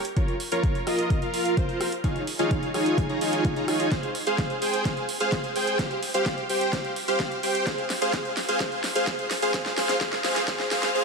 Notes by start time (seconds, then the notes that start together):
0.05 closed hi-hat
0.17 F4 A#4 C#5, kick, closed hi-hat
0.28 closed hi-hat
0.40 open hi-hat
0.52 F4 A#4 C#5, closed hi-hat
0.63 kick, closed hi-hat
0.75 closed hi-hat
0.87 F4 A#4 D#5, cross-stick, open hi-hat
0.99 closed hi-hat
1.10 kick, closed hi-hat
1.22 F4 A#4 F5, closed hi-hat
1.34 open hi-hat
1.45 closed hi-hat
1.57 F4 A#4 C5, kick, closed hi-hat
1.69 closed hi-hat
1.81 cross-stick, open hi-hat
1.92 closed hi-hat
2.04 D#4 F4 G#4 C#5 F5, kick, closed hi-hat
2.16 closed hi-hat
2.27 open hi-hat
2.39 D#4 F4 G#4 C#5 F5, closed hi-hat
2.51 kick, closed hi-hat
2.63 closed hi-hat
2.74 D#4 F4 G#4 C#5 G#5, cross-stick, open hi-hat
2.86 closed hi-hat
2.98 kick, closed hi-hat
3.09 D#4 F4 G#4 C#5 A#5, closed hi-hat
3.21 D#4 F4 G#4 C#5 G#5, open hi-hat
3.33 closed hi-hat
3.45 kick, closed hi-hat
3.56 D#4 F4 G#4 C#5 A#5, closed hi-hat
3.68 D#4 F4 G#4 C#5 G#5, cross-stick, open hi-hat
3.80 closed hi-hat
3.92 C5, kick, snare, closed hi-hat
4.03 closed hi-hat
4.15 open hi-hat
4.27 G#4 C5 F5, closed hi-hat
4.38 kick, snare, closed hi-hat
4.50 closed hi-hat
4.62 G#4 C5 G5, open hi-hat
4.74 closed hi-hat
4.85 G#4 C5 F5, kick, snare, closed hi-hat
4.97 closed hi-hat
5.09 open hi-hat
5.20 G#4 C5 F5, closed hi-hat
5.32 kick, snare, closed hi-hat
5.44 closed hi-hat
5.56 G#4 C5 G5, open hi-hat
5.67 closed hi-hat
5.79 kick, snare, closed hi-hat
5.91 closed hi-hat
6.03 open hi-hat
6.14 G4 C5 F5, closed hi-hat
6.26 kick, snare, closed hi-hat
6.38 closed hi-hat
6.49 G4 C5 G5, open hi-hat
6.61 closed hi-hat
6.73 G4 C5 F5, kick, snare, closed hi-hat
6.85 closed hi-hat
6.96 open hi-hat
7.08 G4 C5 F5, closed hi-hat
7.20 kick, snare, closed hi-hat
7.32 closed hi-hat
7.43 G4 C5 G5, open hi-hat
7.55 closed hi-hat
7.67 G#4 C5 F5, kick, snare, closed hi-hat
7.78 closed hi-hat
7.90 snare, open hi-hat
8.02 G#4 C5 F5, closed hi-hat
8.13 G#4 C5, kick, snare, closed hi-hat
8.25 closed hi-hat
8.37 snare, open hi-hat
8.49 G#4 C5 F5, closed hi-hat
8.60 G#4 C5 F5, kick, snare, closed hi-hat
8.72 closed hi-hat
8.84 snare, open hi-hat
8.95 G#4 C5 F5, closed hi-hat
9.07 G#4, kick, snare, closed hi-hat
9.19 closed hi-hat
9.31 snare, open hi-hat
9.42 G#4 C5 F5, closed hi-hat
9.54 G#4 C5 F5, kick, snare, closed hi-hat
9.66 snare, closed hi-hat
9.78 G#4 C5 F5, snare, open hi-hat
9.89 snare, closed hi-hat
10.01 G#4 C5 F5, kick, snare, closed hi-hat
10.13 snare, closed hi-hat
10.24 G#4 C5 F5, snare, open hi-hat
10.36 snare, closed hi-hat
10.48 G#4 C5 F5, kick, snare, closed hi-hat
10.60 snare, closed hi-hat
10.71 G#4 C5 F5, snare, open hi-hat
10.83 snare, closed hi-hat
10.95 G#4 C5 F5